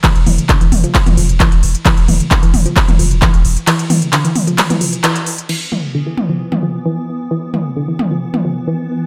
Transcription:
<<
  \new Staff \with { instrumentName = "Synth drone" } { \clef bass \time 4/4 \key c \major \tempo 4 = 132 r1 | r1 | r1 | <e b>1~ |
<e b>1 | }
  \new Staff \with { instrumentName = "Synth arpeggio sound" } { \clef bass \time 4/4 \key c \major e16 r16 e16 r16 d16 e16 r16 f16 r16 e16 f16 r16 e16 r8. | e16 r16 e16 r16 d16 e16 r16 f16 r16 e16 f16 r16 e16 r8. | e16 r16 e16 r16 d16 e16 r16 f16 r16 e16 f16 r16 e16 r8. | e16 r16 e16 r16 d16 e16 r16 f16 r16 e16 f16 r16 e16 r8. |
e16 r16 e16 r16 d16 e16 r16 f16 r16 e16 f16 r16 e16 r8. | }
  \new Staff \with { instrumentName = "Sub bass" } { \clef bass \time 4/4 \key c \major r16 e,,16 e,,16 r8 e,,16 e,,16 r8 e,,16 e,,16 e,,16 r16 e,,16 e,,16 r16 | r16 e,,16 e,,16 r8 e,,16 e,,16 r8 e,,16 e,,16 e,,16 r16 e,,16 e,,16 r16 | r1 | r1 |
r1 | }
  \new DrumStaff \with { instrumentName = "Drums" } \drummode { \time 4/4 <hc hh bd cymr>16 hh16 <hho toml>16 hh16 <hc hh bd cymr>16 hh16 <hho toml>16 hh16 <hc hh bd cymr>16 <hh toml>16 hho16 hh16 <hc hh bd cymr>16 hh16 hho16 hh16 | <hc hh bd cymr>16 hh16 <hho toml>16 hh16 <hc hh bd cymr>16 hh16 <hho toml>16 hh16 <hc hh bd cymr>16 <hh toml>16 hho16 hh16 <hc hh bd cymr>16 hh16 hho16 hh16 | <hc hh cymr>16 hh16 <hho toml>16 hh16 <hc hh cymr>16 hh16 <hho toml>16 hh16 <hc hh cymr toml>16 <hh toml>16 hho16 hh16 <hc hh cymr>16 hh16 hho16 hh16 | cymc8 toml8 r8 toml8 r16 toml8. r4 |
r8 toml8 r8 toml8 r16 toml8. r4 | }
>>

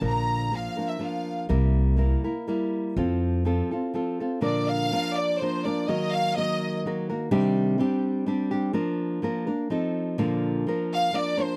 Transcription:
<<
  \new Staff \with { instrumentName = "Violin section" } { \time 3/4 \key f \major \tempo 4 = 124 bes''4 \tuplet 3/2 { f''4 e''8 } f''8. r16 | r2. | r2. | \key bes \major d''8 f''4 d''8 c''8 d''8 |
ees''8 f''8 ees''4 r4 | r2. | r2. | r4. f''8 d''8 c''8 | }
  \new Staff \with { instrumentName = "Nylon-string guitar" } { \time 3/4 \key f \major <bes, d f bes d' bes'>4 <f bes d' bes'>8 <f bes d' bes'>8 <f bes d' bes'>4 | <c g bes e' bes'>4 <g bes e' bes'>8 <bes e' bes'>8 <g bes e' bes'>4 | <f c' f' a'>4 <f c' f' a'>8 <c' f' a'>8 <f c' f' a'>8 <c' f' a'>8 | \key bes \major <bes, d f bes d' bes'>4 <f bes d' bes'>4 <f bes d' bes'>8 <f bes d' bes'>8 |
<ees ges bes ges' bes'>4 <ges bes ges' bes'>4 <ges bes ges' bes'>8 <bes ges' bes'>8 | <c ees g c' d' g'>4 <g c' d' g'>4 <g c' d' g'>8 <g c' d' g'>8 | <f bes d' bes'>4 <f bes d' bes'>8 <bes d' bes'>8 <f c' ees' a'>4 | <bes, d f bes d' bes'>4 <f bes d' bes'>4 <f bes d' bes'>8 <f bes d' bes'>8 | }
  \new Staff \with { instrumentName = "Upright bass" } { \clef bass \time 3/4 \key f \major bes,,2 r4 | c,2 r4 | f,2 r4 | \key bes \major r2. |
r2. | r2. | r2. | r2. | }
>>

